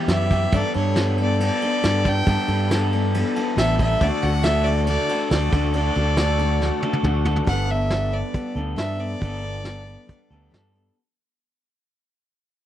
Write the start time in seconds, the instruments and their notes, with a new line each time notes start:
Already playing: clean electric guitar G4, tonewheel organ G4 E5 B5
0.08 fingered electric bass F#2, steel-string acoustic guitar E3 B3 G4, clean electric guitar G3, fiddle E5, snare, ride
0.31 clean electric guitar E3 G3 B3 G4, kick, ride
0.52 fingered electric bass G2, steel-string acoustic guitar G3 B3, tonewheel organ A4 G5 B5, fiddle D5, kick, crash
0.56 steel-string acoustic guitar D4 A4
0.74 fingered electric bass G2, clean electric guitar B3 D4 A4, fiddle C#5, ride
0.96 steel-string acoustic guitar G3 B3 D4, snare, ride
1.00 steel-string acoustic guitar A4
1.17 steel-string acoustic guitar D4 A4, ride
1.21 steel-string acoustic guitar B3, fiddle D5
1.39 steel-string acoustic guitar G3 B3 D4 A4, ride
1.45 fiddle D5
1.61 steel-string acoustic guitar B3 D4 A4, ride
1.83 fingered electric bass G2, steel-string acoustic guitar G3 B3 D4 A4, snare, ride
2.05 clean electric guitar B3 D4 A4, fiddle G5, kick, ride
2.26 fingered electric bass G2, steel-string acoustic guitar G3 B3 D4 A4, kick, ride
2.48 fingered electric bass G2, clean electric guitar B3 D4 A4, ride
2.71 steel-string acoustic guitar G3 B3 D4 A4, snare, ride
2.92 steel-string acoustic guitar B3 D4 A4, ride
3.14 steel-string acoustic guitar G3 B3 D4 A4, ride
3.36 steel-string acoustic guitar B3 D4 A4, ride
3.56 fingered electric bass A1, steel-string acoustic guitar G3 B3 D4 A4, fiddle E5, snare, ride
3.79 clean electric guitar B3 D4 A4, fiddle E5, kick, ride
4.00 fingered electric bass D2, steel-string acoustic guitar D3 A3 D4 F#4, fiddle D5, tonewheel organ F#5 D6, kick, ride
4.04 clean electric guitar A4
4.22 fingered electric bass D2, clean electric guitar F#4 A4, fiddle F#5, ride
4.26 clean electric guitar D4
4.43 steel-string acoustic guitar D3 A3 D4 F#4, fiddle E5, snare, ride
4.48 clean electric guitar A4
4.64 steel-string acoustic guitar D4 F#4, fiddle D5, ride
4.68 steel-string acoustic guitar A3
4.85 steel-string acoustic guitar D3 A3, fiddle D5, ride
4.90 steel-string acoustic guitar D4 F#4
5.09 steel-string acoustic guitar A3 D4 F#4, clean electric guitar A4, ride
5.30 fingered electric bass D2, steel-string acoustic guitar D3 A3 D4 F#4, fiddle D5, snare, ride
5.34 clean electric guitar A4
5.51 fingered electric bass D2, steel-string acoustic guitar D3 A3 D4 F#4, clean electric guitar A4, tonewheel organ D6, kick, ride
5.73 clean electric guitar D3 D4 F#4 A4, fiddle D5, ride
5.95 fingered electric bass D2, clean electric guitar D4 F#4 A4, ride
6.17 steel-string acoustic guitar D3 A3 D4, clean electric guitar A4, snare, ride
6.21 steel-string acoustic guitar F#4
6.39 steel-string acoustic guitar A3 D4 F#4, ride
6.59 steel-string acoustic guitar D3 A3 D4, snare
6.64 steel-string acoustic guitar F#4
6.80 steel-string acoustic guitar A3 D4 F#4, clean electric guitar A4, high tom
6.93 high tom
7.03 fingered electric bass D2, steel-string acoustic guitar D3 A3 D4 F#4, mid tom
7.07 clean electric guitar A4
7.25 clean electric guitar D4 F#4 A4, floor tom
7.36 floor tom
7.45 fingered electric bass G1, steel-string acoustic guitar G3 B3 D4 A4, fiddle F#5, kick, closed hi-hat
7.67 steel-string acoustic guitar B3 D4 A4, fiddle E5, closed hi-hat
7.90 steel-string acoustic guitar G3 B3 D4 A4, snare, closed hi-hat
8.11 steel-string acoustic guitar B3 D4 A4, fiddle D5, closed hi-hat
8.33 steel-string acoustic guitar G3 B3 D4 A4, kick, closed hi-hat
8.55 fingered electric bass D2, clean electric guitar G3 B3 D4 A4, closed hi-hat
8.76 fingered electric bass G2, steel-string acoustic guitar G3 B3 D4 A4, fiddle E5, snare, closed hi-hat
8.98 steel-string acoustic guitar B3 D4 A4, fiddle D5, closed hi-hat
9.19 fingered electric bass G1, steel-string acoustic guitar G3 B3 D4 A4, kick, closed hi-hat
9.42 steel-string acoustic guitar B3 D4 A4, closed hi-hat
9.62 steel-string acoustic guitar G3 B3 D4 A4, snare, closed hi-hat
9.84 steel-string acoustic guitar B3 D4 A4, closed hi-hat
10.07 steel-string acoustic guitar G3 B3 D4 A4, kick, closed hi-hat
10.30 fingered electric bass D2, clean electric guitar G3 B3 D4 A4, closed hi-hat
10.50 fingered electric bass G2, steel-string acoustic guitar G3 B3 D4 A4, snare, closed hi-hat
10.56 clean electric guitar A4
10.72 steel-string acoustic guitar B3 D4 A4